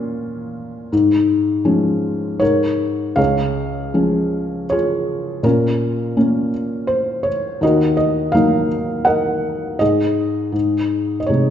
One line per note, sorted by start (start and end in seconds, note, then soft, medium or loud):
0.00 0.88 A#2 medium
0.00 0.88 A#3 soft
0.00 0.88 C#4 soft
0.00 0.94 F4 medium
0.00 2.35 C#5 medium
0.92 2.38 G#2 medium
1.65 2.39 F3 soft
1.65 2.39 G#3 soft
1.65 2.39 C#4 soft
2.40 3.16 G#2 soft
2.40 3.15 A#4 medium
2.40 3.17 C#5 medium
3.16 5.39 C#2 soft
3.16 4.66 G#4 soft
3.16 4.66 C#5 soft
3.16 4.73 F5 medium
3.94 5.40 F3 soft
3.94 5.40 G#3 soft
3.94 5.40 C#4 soft
4.70 5.41 F4 soft
4.70 5.41 G#4 soft
4.70 5.40 C#5 medium
5.43 7.58 A#2 soft
5.43 6.15 C#4 soft
5.43 6.50 F4 soft
5.43 6.50 A#4 medium
6.17 7.58 A#3 soft
6.17 7.58 C#4 soft
6.87 7.26 C5 medium
7.23 7.62 C#5 medium
7.61 9.76 D#2 medium
7.61 8.67 F#4 soft
7.61 8.33 A#4 soft
7.61 7.95 D#5 medium
7.97 8.35 D#5 medium
8.32 9.76 F#3 soft
8.32 9.76 A#3 soft
8.32 9.76 D#4 soft
8.32 9.05 A#4 soft
8.32 9.01 F5 medium
9.05 9.76 A#4 medium
9.05 9.76 D#5 medium
9.05 9.82 F#5 medium
9.79 10.51 G#2 medium
9.79 11.19 G#4 soft
9.79 11.19 D#5 medium
10.52 11.50 G#2 medium
11.20 11.28 D#5 soft
11.27 11.50 C3 soft
11.27 11.50 G#3 soft
11.27 11.50 D#4 soft
11.27 11.50 C#5 medium